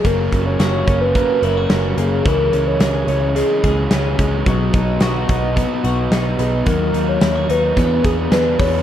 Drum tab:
HH |xxxxxxxx|xxxxxxxx|xxxxxxxx|xxxxxxxo|
SD |--o---o-|--o---o-|--o---o-|--o---o-|
BD |oo-oo---|o----o-o|oo-oo---|o---oo-o|